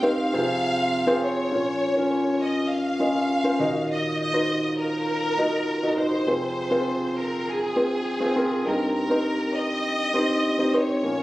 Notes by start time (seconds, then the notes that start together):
Already playing: G2 G3 C4 D#4 G4 A#4
0.03 C4 D#4 G4 C5 F5
0.33 F2 C3 C4 F4 G#4 C5
1.07 C4 F4 G#4 C5
1.22 C#5
1.51 A#2 F3 C#4 F4 A#4 C#5
1.95 C#4 F4 A#4 C#5
2.41 D#5
2.70 F5
3.00 C#4 F4 A#4 D#5
3.44 C#4 F4 A#4 C5
3.59 D#2 A#2 D#4 F#4 A#4 D#5
3.90 D#5
4.19 D#5
4.33 D#4 F#4 A#4 C5
4.78 A#4
5.37 D#4 F#4 A#4 D#5
5.82 D#4 F#4 A#4 D#5
5.97 D#4 F#4 A#4 C5 D#5
6.27 F2 C3 C4 F4 G#4 C5
6.71 C4 F4 G#4 C5
7.17 A#4
7.48 G#4
7.76 C4 F4 G#4 C5
8.20 C4 F4 G#4 C5
8.36 C4 F4 G#4 A#4
8.65 G2 G3 C4 D#4 G4 A#4
8.95 A#4
9.10 C4 D#4 G4 C5
9.53 D#5
10.14 C4 D#4 G4 C5
10.59 C4 D#4 G4 C5
10.73 C4 D#4 G4 C5 C#5
11.03 A#2 F3 A#3 C#4 F4 A#4